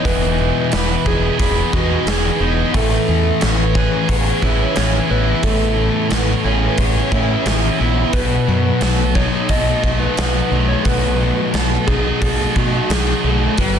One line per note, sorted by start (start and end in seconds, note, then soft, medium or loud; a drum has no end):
0.00 0.72 E3 medium
0.00 2.40 B3 medium
0.00 0.72 D#4 medium
0.00 0.73 D#4 medium
0.00 1.40 D#4 medium
0.00 0.38 G#4 medium
0.00 1.05 G#4 medium
0.00 1.40 G#4 medium
0.00 0.72 B4 medium
0.05 0.50 E1 medium
0.05 1.73 E2 medium
0.05 1.76 E3 medium
0.05 0.72 B3 medium
0.05 1.08 B4 loud
0.05 kick loud
0.05 open hi-hat soft
0.38 2.07 B2 medium
0.38 3.07 G#4 medium
0.72 0.95 E1 medium
0.72 2.07 E3 medium
0.72 1.39 B3 medium
0.72 1.38 B4 medium
0.72 snare medium
0.72 open hi-hat soft
1.06 1.28 E1 medium
1.06 1.72 D#4 medium
1.06 1.73 D#4 medium
1.06 2.07 G#4 medium
1.06 1.39 G#4 medium
1.06 kick medium
1.39 1.62 E1 medium
1.39 2.06 B3 medium
1.39 1.76 G#4 loud
1.39 2.78 G#4 medium
1.39 2.77 B4 medium
1.39 kick loud
1.39 open hi-hat medium
1.73 1.96 E2 medium
1.73 2.39 D#4 medium
1.73 2.74 D#4 medium
1.73 2.09 F#4 medium
1.73 kick medium
2.06 2.29 E1 medium
2.06 3.08 E3 medium
2.06 2.40 B3 medium
2.06 2.58 G#4 loud
2.06 2.77 G#4 medium
2.06 snare loud
2.06 open hi-hat medium
2.40 2.62 E1 medium
2.40 2.78 B3 medium
2.40 3.42 B3 medium
2.40 2.74 D#4 medium
2.74 2.97 A1 medium
2.74 4.42 A2 medium
2.74 4.42 E3 medium
2.74 4.79 A3 medium
2.74 3.78 A4 loud
2.74 kick loud
2.74 open hi-hat soft
3.08 3.30 E2 medium
3.08 3.40 E3 medium
3.08 4.76 G#4 medium
3.41 3.87 A1 medium
3.41 4.74 E3 medium
3.41 4.09 B3 medium
3.41 4.08 C#5 medium
3.41 snare loud
3.41 open hi-hat soft
3.74 4.41 C#4 medium
3.74 4.75 G#4 medium
3.74 4.78 B4 medium
3.74 kick medium
4.08 4.31 A1 medium
4.08 5.10 B3 medium
4.08 5.77 G#4 medium
4.08 5.77 C#5 medium
4.08 kick loud
4.08 open hi-hat medium
4.42 4.65 A1 medium
4.42 6.11 C#4 medium
4.42 5.09 E4 medium
4.42 kick medium
4.75 4.99 A1 medium
4.75 5.75 E3 medium
4.75 6.43 G#4 medium
4.75 5.12 C#5 medium
4.75 snare loud
4.75 open hi-hat soft
5.09 5.33 A1 medium
5.09 7.15 B3 medium
5.09 6.12 B3 medium
5.09 6.78 E4 medium
5.09 5.43 B4 medium
5.42 5.88 A1 medium
5.42 7.11 A2 medium
5.42 7.12 E3 medium
5.42 7.49 A3 medium
5.42 6.75 A4 medium
5.42 kick loud
5.42 open hi-hat soft
5.76 6.07 E3 medium
6.09 6.33 A1 medium
6.09 7.43 E3 medium
6.09 6.79 B3 medium
6.09 6.77 C#5 medium
6.09 snare loud
6.09 open hi-hat soft
6.44 6.67 A1 medium
6.44 7.10 C#4 medium
6.44 7.12 C#4 medium
6.44 7.45 G#4 medium
6.78 7.01 A1 medium
6.78 7.80 B3 medium
6.78 8.13 G#4 medium
6.78 8.14 C#5 medium
6.78 kick loud
6.78 open hi-hat medium
7.12 7.34 A2 medium
7.12 8.13 C#4 medium
7.12 8.14 C#4 medium
7.12 7.79 E4 medium
7.12 kick medium
7.45 7.68 A1 medium
7.45 8.13 E3 medium
7.45 8.14 E3 medium
7.45 8.14 G#4 medium
7.45 snare loud
7.45 open hi-hat medium
7.79 8.03 A#1 medium
7.79 10.50 B3 medium
7.79 8.83 B3 medium
7.79 8.14 E4 medium
8.13 8.36 B1 medium
8.13 9.83 B2 medium
8.13 10.17 F#3 medium
8.13 9.17 B4 loud
8.13 kick medium
8.13 open hi-hat soft
8.47 8.70 F#2 medium
8.47 8.80 F#3 medium
8.47 11.20 F#4 medium
8.80 9.26 B1 medium
8.80 10.17 F#3 medium
8.80 9.49 A3 medium
8.80 9.49 A4 medium
8.80 snare loud
8.80 open hi-hat soft
9.15 10.16 D#4 medium
9.15 9.81 D#4 medium
9.15 9.83 D#4 medium
9.15 9.51 C#5 loud
9.15 kick medium
9.49 9.72 B1 medium
9.49 10.51 A3 medium
9.49 12.21 F#4 medium
9.49 11.20 A4 medium
9.49 10.01 D#5 loud
9.49 kick loud
9.49 open hi-hat medium
9.83 10.06 B1 medium
9.83 10.51 A3 medium
9.83 11.53 D#4 medium
9.83 11.54 D#4 medium
9.83 kick medium
10.00 10.17 B4 medium
10.17 10.40 B1 medium
10.17 11.19 F#3 medium
10.17 10.86 F#3 medium
10.17 11.87 D#4 medium
10.17 10.70 B4 loud
10.17 snare medium
10.17 open hi-hat soft
10.51 10.74 B1 medium
10.51 12.21 A3 medium
10.51 12.22 A3 medium
10.51 11.53 A3 medium
10.68 10.86 C#5 loud
10.85 11.31 B1 medium
10.85 12.56 B2 medium
10.85 12.90 F#3 medium
10.85 11.88 B4 loud
10.85 kick medium
10.85 open hi-hat soft
11.19 11.53 F#3 medium
11.19 13.79 F#4 medium
11.54 11.76 B1 medium
11.54 12.90 F#3 medium
11.54 12.21 A3 medium
11.54 12.21 A4 medium
11.54 snare loud
11.54 open hi-hat soft
11.87 12.10 B1 medium
11.87 12.54 D#4 medium
11.87 12.55 D#4 medium
11.87 12.90 D#4 medium
11.87 12.21 G#4 medium
11.87 kick medium
12.22 12.44 B1 medium
12.22 13.23 A3 medium
12.22 13.61 F#4 medium
12.22 12.58 G#4 medium
12.22 13.58 A4 medium
12.22 kick loud
12.22 open hi-hat soft
12.55 12.79 B2 medium
12.55 13.24 A3 medium
12.55 13.58 D#4 medium
12.55 13.59 D#4 medium
12.55 12.92 F#4 medium
12.55 kick medium
12.90 13.12 B1 medium
12.90 13.58 F#3 medium
12.90 13.79 F#3 medium
12.90 13.59 D#4 medium
12.90 13.42 G#4 loud
12.90 snare loud
12.90 open hi-hat medium
13.24 13.47 B1 medium
13.24 13.58 A3 medium
13.24 13.59 A3 medium
13.58 13.79 G1 medium
13.58 13.79 G3 medium
13.58 13.79 B4 loud
13.58 kick loud
13.58 open hi-hat soft